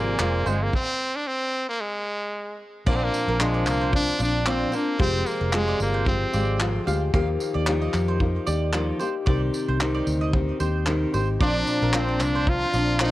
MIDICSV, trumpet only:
0, 0, Header, 1, 2, 480
1, 0, Start_track
1, 0, Tempo, 533808
1, 660, Time_signature, 4, 2, 24, 8
1, 11789, End_track
2, 0, Start_track
2, 0, Title_t, "Trumpet"
2, 0, Program_c, 0, 56
2, 0, Note_on_c, 0, 58, 101
2, 439, Note_on_c, 0, 56, 90
2, 453, Note_off_c, 0, 58, 0
2, 568, Note_on_c, 0, 58, 95
2, 581, Note_off_c, 0, 56, 0
2, 668, Note_off_c, 0, 58, 0
2, 674, Note_on_c, 0, 60, 122
2, 1044, Note_on_c, 0, 62, 102
2, 1057, Note_off_c, 0, 60, 0
2, 1143, Note_on_c, 0, 60, 116
2, 1156, Note_off_c, 0, 62, 0
2, 1513, Note_off_c, 0, 60, 0
2, 1521, Note_on_c, 0, 58, 99
2, 1626, Note_on_c, 0, 56, 94
2, 1640, Note_off_c, 0, 58, 0
2, 2343, Note_off_c, 0, 56, 0
2, 2588, Note_on_c, 0, 58, 104
2, 2661, Note_on_c, 0, 60, 90
2, 2675, Note_off_c, 0, 58, 0
2, 2734, Note_on_c, 0, 58, 106
2, 2747, Note_off_c, 0, 60, 0
2, 3072, Note_on_c, 0, 56, 91
2, 3086, Note_off_c, 0, 58, 0
2, 3306, Note_off_c, 0, 56, 0
2, 3315, Note_on_c, 0, 58, 97
2, 3531, Note_off_c, 0, 58, 0
2, 3558, Note_on_c, 0, 62, 119
2, 3773, Note_off_c, 0, 62, 0
2, 3801, Note_on_c, 0, 62, 104
2, 4014, Note_off_c, 0, 62, 0
2, 4036, Note_on_c, 0, 60, 94
2, 4272, Note_on_c, 0, 58, 93
2, 4285, Note_off_c, 0, 60, 0
2, 4503, Note_off_c, 0, 58, 0
2, 4509, Note_on_c, 0, 60, 114
2, 4742, Note_on_c, 0, 58, 92
2, 4756, Note_off_c, 0, 60, 0
2, 4991, Note_on_c, 0, 56, 101
2, 5005, Note_off_c, 0, 58, 0
2, 5225, Note_off_c, 0, 56, 0
2, 5230, Note_on_c, 0, 58, 97
2, 5448, Note_off_c, 0, 58, 0
2, 5461, Note_on_c, 0, 60, 98
2, 6144, Note_off_c, 0, 60, 0
2, 10264, Note_on_c, 0, 62, 113
2, 10754, Note_on_c, 0, 60, 96
2, 10767, Note_off_c, 0, 62, 0
2, 10994, Note_on_c, 0, 62, 100
2, 11008, Note_off_c, 0, 60, 0
2, 11228, Note_on_c, 0, 65, 116
2, 11241, Note_off_c, 0, 62, 0
2, 11702, Note_off_c, 0, 65, 0
2, 11719, Note_on_c, 0, 63, 98
2, 11789, Note_off_c, 0, 63, 0
2, 11789, End_track
0, 0, End_of_file